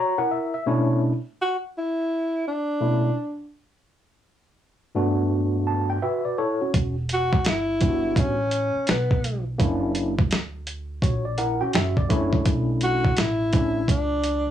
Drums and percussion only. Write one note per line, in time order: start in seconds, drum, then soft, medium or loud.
6.74 kick medium
6.74 closed hi-hat medium
7.09 closed hi-hat medium
7.33 kick medium
7.45 snare loud
7.45 closed hi-hat medium
7.81 kick medium
7.81 closed hi-hat medium
8.16 kick loud
8.16 closed hi-hat medium
8.51 closed hi-hat medium
8.87 snare medium
8.87 closed hi-hat medium
9.11 kick medium
9.24 closed hi-hat medium
9.60 kick loud
9.60 closed hi-hat medium
9.95 closed hi-hat medium
10.19 kick medium
10.31 snare loud
10.31 closed hi-hat medium
10.67 closed hi-hat medium
11.02 kick medium
11.02 closed hi-hat medium
11.38 closed hi-hat medium
11.73 snare loud
11.73 closed hi-hat medium
11.97 kick medium
12.10 kick medium
12.10 closed hi-hat medium
12.33 kick medium
12.45 kick loud
12.45 closed hi-hat medium
12.81 closed hi-hat medium
13.05 kick medium
13.17 snare loud
13.17 closed hi-hat medium
13.53 kick medium
13.53 closed hi-hat medium
13.88 kick medium
13.88 closed hi-hat medium
14.24 closed hi-hat medium